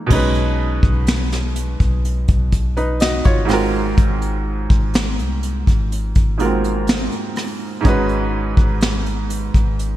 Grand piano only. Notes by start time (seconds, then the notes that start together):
Already playing: E3 G#3 A#3 D#4
0.07 B2 G#3
0.11 C#4 D#4 B4
2.77 D#4 B4
3.01 F#4 D#5
3.25 F4 C#5
3.45 G#2 G#3 C4
3.50 F4 F#4 A#4
6.38 G#2 G#3 A#3 F4 F#4 A#4
6.46 C4
7.81 G#2 G#3 C#4
7.86 D#4 F#4 B4